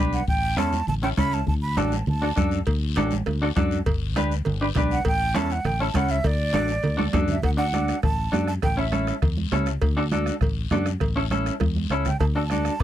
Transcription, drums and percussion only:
0.13 short guiro
0.28 bombo low, long guiro
0.57 bombo rim, high conga, short guiro
0.73 high conga, short guiro
0.87 low conga, long guiro
1.17 bombo low, bombo rim, high conga, short guiro
1.32 short guiro
1.47 bombo low, low conga, long guiro
1.77 bombo rim, high conga, short guiro
1.92 high conga, short guiro
2.06 low conga, long guiro
2.37 bombo low, bombo rim, high conga, short guiro
2.51 short guiro
2.66 bombo low, cowbell, long guiro
2.96 bombo rim, cowbell, high conga, short guiro
3.11 high conga, short guiro
3.26 bombo rim, cowbell, low conga, long guiro
3.56 bombo low, bombo rim, cowbell, high conga, short guiro
3.71 short guiro
3.86 bombo low, cowbell, low conga, long guiro
4.16 bombo rim, cowbell, high conga, short guiro
4.31 short guiro
4.45 cowbell, low conga, long guiro
4.75 bombo low, bombo rim, cowbell, high conga, low conga, short guiro
4.91 short guiro
5.05 bombo low, cowbell, long guiro
5.35 bombo rim, cowbell, high conga, short guiro
5.50 short guiro
5.65 bombo rim, cowbell, low conga, long guiro
5.94 bombo low, bombo rim, cowbell, high conga, short guiro
6.09 short guiro
6.24 bombo low, cowbell, low conga, long guiro
6.53 bombo rim, cowbell, high conga, short guiro
6.68 short guiro
6.83 cowbell, low conga, long guiro
6.99 high conga
7.13 bombo low, bombo rim, cowbell, high conga, low timbale, short guiro
7.28 low conga, short guiro
7.42 bombo low, bombo rim, cowbell, low conga, long guiro
7.73 bombo rim, high conga, short guiro
7.88 bombo rim, short guiro
8.03 bombo low, bombo rim, cowbell, low conga, long guiro
8.33 bombo rim, high conga, low timbale, short guiro
8.47 bombo rim, short guiro
8.62 bombo low, bombo rim, cowbell, low conga, long guiro
8.92 bombo rim, high conga, short guiro
9.07 bombo rim, short guiro
9.22 bombo low, bombo rim, cowbell, low conga, long guiro
9.37 high conga
9.52 bombo rim, high conga, low conga, low timbale, short guiro
9.66 bombo rim, short guiro
9.82 bombo low, bombo rim, cowbell, low conga, long guiro
10.11 bombo rim, high conga, short guiro
10.26 bombo rim, short guiro
10.41 bombo low, bombo rim, cowbell, low conga, long guiro
10.71 bombo rim, high conga, low conga, low timbale, short guiro
10.86 bombo rim, short guiro
11.00 bombo low, bombo rim, cowbell, low conga, long guiro
11.31 bombo rim, high conga, short guiro
11.46 bombo rim, short guiro
11.60 bombo low, bombo rim, cowbell, high conga, long guiro
11.76 high conga
11.90 bombo rim, short guiro
12.05 bombo rim, low conga, short guiro
12.20 bombo low, bombo rim, cowbell, low conga, long guiro
12.50 bombo rim, high conga, short guiro
12.65 bombo rim, short guiro

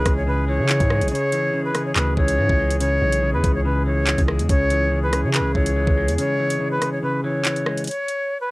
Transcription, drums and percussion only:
0.06 kick, cross-stick, closed hi-hat
0.69 clap, closed hi-hat
0.80 kick, closed hi-hat
0.90 cross-stick
1.01 closed hi-hat
1.08 closed hi-hat
1.15 closed hi-hat
1.32 closed hi-hat
1.75 cross-stick, closed hi-hat
1.96 clap, closed hi-hat
2.17 kick
2.28 closed hi-hat
2.49 kick
2.70 closed hi-hat
2.80 closed hi-hat
3.12 closed hi-hat
3.44 kick, closed hi-hat
4.07 clap, closed hi-hat
4.18 kick, closed hi-hat
4.28 cross-stick
4.39 closed hi-hat
4.49 kick, closed hi-hat
4.70 closed hi-hat
5.13 cross-stick, closed hi-hat
5.34 clap, closed hi-hat
5.55 kick
5.66 closed hi-hat
5.87 kick
6.08 closed hi-hat
6.18 closed hi-hat
6.50 closed hi-hat
6.82 cross-stick, closed hi-hat
7.45 clap, closed hi-hat
7.56 closed hi-hat
7.66 cross-stick
7.77 closed hi-hat
7.84 closed hi-hat
7.87 closed hi-hat
7.91 closed hi-hat
8.08 closed hi-hat

